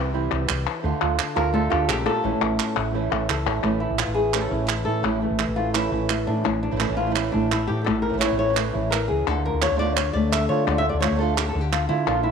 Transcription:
Already playing: C2 C3 E3 G3 C4 E4 G4 D5
0.13 C3 E3 G3 C4 E4
0.31 C2, clap
0.48 C2 G4, muted nylon-string guitar stroke, clap
0.67 clap
0.83 D2 D3 A3 D4 F4
1.01 D2 A3 D4 F4
1.18 muted nylon-string guitar stroke, clap
1.35 D2 A3 D4 F4 A#4, clap
1.53 D3 A3 D4 F4 A4
1.70 D2 A3 D4 F4 G4, clap
1.88 A#1 C#3 G4, muted nylon-string guitar stroke, clap
2.00 A#4
2.06 A#2 A3 D4 F4 A4
2.23 A1 A2 E3 A3 C#4 E4
2.41 A1 A3 C#4 E4, clap
2.58 muted nylon-string guitar stroke, clap
2.76 A1 A3 C#4 E4, clap
2.93 E3 A3 C#4 E4
3.10 A1 A3 C#4 E4, clap
3.29 C#2 A4, clap
3.46 A1 A3 C#4 E4, clap
3.63 A1 A2 E3 A3 C#4 E4
3.80 A3 C#4 E4
3.90 A1
3.98 E3 F4, muted nylon-string guitar stroke, clap
4.07 A1
4.14 A3 C#4 E4 G#4
4.33 E3 A3 C#4 E4 A4, clap
4.49 A1 E3 A3 C#4 E4
4.67 E4, muted nylon-string guitar stroke, clap
4.85 A2 A3 C#4 E4 A4
5.03 A1 A2 E3 A3 C#4 E4 G4
5.21 A3 C#4 E4
5.31 A1
5.38 E3, muted nylon-string guitar stroke, clap
5.48 A1
5.56 A3 C#4 E4 F4
5.74 E3 A3 C#4 E4, clap
5.91 A1 E3 A3 C#4 E4
6.09 A3, muted nylon-string guitar stroke, clap
6.27 A2 A3 C#4 D4 E4
6.44 A1 A2 C#4, muted nylon-string guitar stroke
6.63 D4
6.71 A1 E3 A3 C#4 E4
6.76 E3 A3 C#4 E4
6.80 E3 A3 C#4 E4, clap
6.90 A1
6.97 A3 C#4 E4 F4
7.06 E3 A3 C#4 E4
7.10 E3 A3 C#4 E4
7.15 E3 A3 C#4 E4, clap
7.32 A1 A2 A3 C#4 D4 E4
7.52 E4, muted nylon-string guitar stroke, clap
7.67 A2 G4
7.84 A1 A2 A4, muted nylon-string guitar stroke
8.02 A#4
8.09 E3 A3 C#4 E4
8.13 A1 E3 A3 C#4 E4
8.18 E3 A3 C#4 E4 C#5, clap
8.22 E3 A3 C#4 E4
8.32 A1
8.39 A3 C#4 E4 C#5
8.49 E3 A3 C#4 E4
8.53 E3 A3 C#4 E4, clap
8.58 E3 A3 C#4 E4
8.74 A1 E3 A3 C#4 E4
8.90 A#4, muted nylon-string guitar stroke, clap
9.08 C#2 G#4
9.27 D2 D3 A3 D4 F4 A4, clap
9.46 A#4
9.53 D2
9.62 A3 D4 F4 C#5, clap
9.66 D3 A3 D4 F4
9.71 D2 D3 A3 D4 F4
9.75 D3 A3 D4 F4 D5
9.80 D3 A3 D4 F4
9.96 C#5, muted nylon-string guitar stroke, clap
10.13 D2 A3 D5
10.32 E5, clap
10.49 D3 A3 D4 F4 C#5
10.67 D2 D3 A3 D4 D5
10.71 F4
10.78 E5
10.89 D5
10.94 D2
11.00 A3 D4 F4 C#5, clap
11.05 D3 A3 D4 F4
11.11 D2 D3 A3 D4 F4
11.16 D3 A3 D4 F4 A4
11.20 D3 A3 D4 F4
11.37 G4, muted nylon-string guitar stroke, clap
11.48 A4
11.55 D2 D3
11.61 G4
11.72 F4, clap
11.89 D3 A3 D4 E4 F4
12.06 A#1 A#2 D3 A#3 D4 F4
12.23 E4

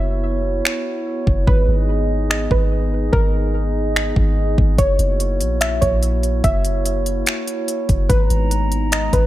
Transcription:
Already playing: F#1 B3 E4 F#4 C#5 E5
0.65 finger snap
1.27 F#1, kick
1.47 G#1 B3 D#4 G#4 B4 D#5, kick
1.68 G#1
2.30 D#5, finger snap
2.51 G#1 B4, kick
3.13 G#1 A#4, kick
3.96 finger snap
4.16 G#1, kick
4.58 G#1, kick
4.78 F#1 A#3 E4 F#4 C#5, kick, closed hi-hat
4.99 F#1, closed hi-hat
5.20 closed hi-hat
5.40 A#1, closed hi-hat
5.61 E5, finger snap, closed hi-hat
5.81 A#1 C#5, kick, closed hi-hat
6.03 closed hi-hat
6.23 closed hi-hat
6.44 F#1 E5, kick, closed hi-hat
6.65 closed hi-hat
6.86 closed hi-hat
7.06 closed hi-hat
7.26 finger snap, closed hi-hat
7.48 closed hi-hat
7.68 closed hi-hat
7.89 F#1, kick, closed hi-hat
8.09 G#1 G#3 B3 D#4 B4 A#5, kick, closed hi-hat
8.30 G#1, closed hi-hat
8.51 closed hi-hat
8.72 closed hi-hat
8.92 D#5, finger snap, closed hi-hat
9.13 G#1 B4, kick, closed hi-hat

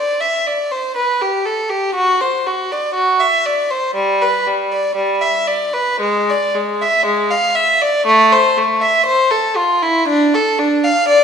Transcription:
Already playing: D5
0.20 E5
0.46 D5
0.71 C5
0.96 B4
1.21 G4
1.45 A4
1.69 G4
1.94 F#4
2.21 C5
2.46 F#4
2.71 D5
2.94 F#4
3.20 E5
3.46 D5
3.70 C5
3.95 G3
4.21 B4
4.47 G3
4.72 D5
4.95 G3
5.20 E5
5.47 D5
5.74 B4
6.00 G#3
6.29 D5
6.55 G#3
6.81 E5
7.05 G#3
7.30 F5
7.55 E5
7.81 D5
8.06 A3
8.32 C5
8.57 A3
8.81 E5
9.06 C5
9.31 A4
9.56 F4
9.82 E4
10.07 D4
10.34 A4
10.59 D4
10.84 F5
11.08 D5

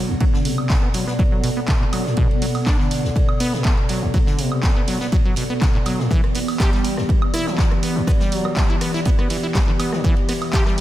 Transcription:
Already playing: B2 F#3 B3 A4 D5
0.09 B1
0.20 F#3, kick, ride
0.33 D3, snare
0.45 C3, open hi-hat, ride
0.58 high woodblock
0.70 D3, kick, snare, clap, ride
0.83 B3
0.94 F#3, open hi-hat, ride
1.07 B3, snare
1.19 F#3, kick, ride
1.32 F#3
1.43 B2, open hi-hat, ride
1.57 B3
1.68 D3, kick, snare, clap, ride
1.81 A2, clap
1.93 F#3, open hi-hat, ride, high woodblock
2.06 A2, snare
2.17 B2, kick, ride
2.31 ride
2.42 F#3, open hi-hat, ride
2.55 open hi-hat, high woodblock
2.66 D4, kick, snare, clap, ride
2.80 D3, snare
2.91 open hi-hat, ride
3.04 B1, snare
3.16 kick, ride
3.29 high woodblock
3.40 B3, open hi-hat, ride
3.53 B2, snare
3.64 kick, snare, clap, ride
3.77 ride
3.89 F#3, open hi-hat, ride
4.02 B1
4.14 F#3, kick, ride
4.26 D3, snare
4.39 C3, open hi-hat, ride
4.52 high woodblock
4.63 D3, kick, snare, clap, ride
4.76 B3
4.87 F#3, open hi-hat, ride
5.01 B3, snare
5.12 F#3, kick, ride
5.25 F#3
5.36 B2, open hi-hat, ride
5.50 B3
5.61 D3, kick, snare, clap, ride
5.75 A2, clap
5.86 F#3, open hi-hat, ride, high woodblock
5.99 A2, snare
6.11 E3 G4 D5, kick, ride
6.24 cross-stick, ride
6.34 B3, open hi-hat, ride
6.48 open hi-hat, high woodblock
6.60 G4, kick, cross-stick, snare, clap, ride
6.73 G3, snare
6.84 open hi-hat, ride
6.97 E2, cross-stick, snare
7.09 kick, ride
7.22 high woodblock
7.34 E4, cross-stick, open hi-hat, ride
7.47 E3, snare
7.58 kick, snare, clap, ride
7.71 cross-stick, ride
7.83 B3, open hi-hat, ride
7.96 E2
8.07 B3, kick, cross-stick, ride
8.20 G3, snare
8.32 F#3, open hi-hat, ride
8.45 cross-stick, high woodblock
8.57 G3, kick, snare, clap, ride
8.70 E4
8.81 B3, cross-stick, open hi-hat, ride
8.94 E4, snare
9.05 B3, kick, ride
9.19 B3, cross-stick
9.30 E3, open hi-hat, ride
9.43 E4
9.55 G3, kick, cross-stick, snare, clap, ride
9.68 D3, clap
9.80 B3, open hi-hat, ride, high woodblock
9.93 D3, cross-stick, snare
10.04 E3 E5, kick, ride
10.17 ride
10.29 B3, cross-stick, open hi-hat, ride
10.42 open hi-hat, high woodblock
10.53 G4, kick, snare, clap, ride
10.66 G3, cross-stick, snare

